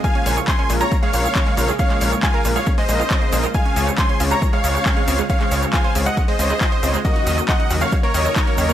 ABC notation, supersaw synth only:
X:1
M:4/4
L:1/16
Q:1/4=137
K:Bbm
V:1 name="Supersaw synth"
[fa]3 z [ac']2 z [db] z [df]6 z | [df]3 z [fa]2 z [df] z [ce]6 z | [fa]3 z [ac']2 z [db] z [df]6 z | [df]3 z [fa]2 z [eg] z [ce]6 z |
[Ge]3 z [eg]2 z [df] z [Bd]6 z |]